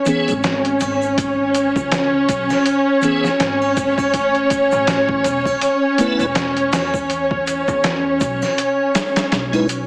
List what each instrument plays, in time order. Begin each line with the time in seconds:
Already playing: violin section C#4 C#5
0.06 tonewheel organ E3 B3 C#4 G#4, closed hi-hat, shaker
0.28 upright bass G#1, closed hi-hat, shaker
0.43 snare, closed hi-hat, shaker
0.65 closed hi-hat
0.81 upright bass G#1, closed hi-hat, triangle, shaker
1.02 shaker
1.18 kick, closed hi-hat, shaker
1.54 closed hi-hat, shaker
1.76 upright bass C#2, kick, shaker
1.92 snare, closed hi-hat, shaker
2.29 upright bass B1, kick, closed hi-hat, shaker
2.50 snare, triangle, shaker
2.66 closed hi-hat, shaker
3.02 tonewheel organ E3 B3 C#4 G#4, closed hi-hat, shaker
3.24 snare, shaker
3.40 upright bass G#1, snare, closed hi-hat, shaker
3.62 triangle
3.77 kick, closed hi-hat, shaker
3.98 kick, triangle, shaker
4.14 upright bass A1, kick, closed hi-hat, shaker
4.35 closed hi-hat
4.50 kick, closed hi-hat, shaker
4.72 upright bass A1, shaker
4.87 snare, closed hi-hat, shaker
5.09 kick
5.24 upright bass E1, closed hi-hat, shaker
5.45 kick, triangle, shaker
5.61 closed hi-hat, shaker
5.98 tonewheel organ A3 B3 E4 B4, closed hi-hat, shaker
6.19 upright bass E1, closed hi-hat, shaker
6.35 snare, closed hi-hat, shaker
6.57 closed hi-hat
6.73 upright bass E2, snare, closed hi-hat, triangle, shaker
6.94 kick, shaker
7.10 closed hi-hat, shaker
7.31 kick
7.47 closed hi-hat, shaker
7.68 upright bass E2, kick, shaker
7.84 snare, closed hi-hat, shaker
8.21 upright bass B1, kick, closed hi-hat, shaker
8.42 snare, triangle, shaker
8.58 closed hi-hat, shaker
8.95 snare, closed hi-hat, shaker
9.16 snare, closed hi-hat, shaker
9.32 upright bass B1, snare, closed hi-hat, shaker
9.52 tonewheel organ G#3 D#4 E4 B4, closed hi-hat, triangle
9.69 closed hi-hat, shaker